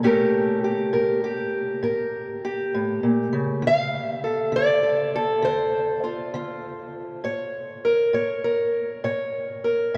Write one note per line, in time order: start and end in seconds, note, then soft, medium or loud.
0.03 0.57 A2 medium
0.03 3.60 A3 medium
0.03 3.61 C#4 medium
0.03 0.63 G4 medium
0.03 0.92 A#4 medium
0.64 1.23 G4 medium
0.93 1.47 A2 medium
0.93 1.82 A#4 medium
1.24 2.43 G4 medium
1.83 2.37 A2 medium
1.83 3.60 A#4 medium
2.45 3.61 G4 medium
2.74 3.03 A2 medium
3.03 3.32 A#2 medium
3.33 3.63 C#3 medium
3.62 4.17 D3 medium
3.67 4.55 F5 loud
4.24 4.83 A4 soft
4.52 5.07 D3 medium
4.52 5.15 D5 medium
4.83 5.16 A4 soft
5.16 6.05 A4 medium
5.42 5.97 D3 medium
5.42 7.24 C5 medium
6.04 6.34 F4 soft
6.34 6.88 D3 medium
6.34 7.21 F4 soft
7.24 7.78 A2 medium
7.24 8.13 C#5 medium
7.85 8.43 A#4 medium
8.13 8.68 A2 medium
8.13 9.03 C#5 medium
8.44 9.63 A#4 medium
9.04 9.58 A2 medium
9.04 9.94 C#5 medium
9.64 9.97 A#4 medium
9.94 9.97 A2 medium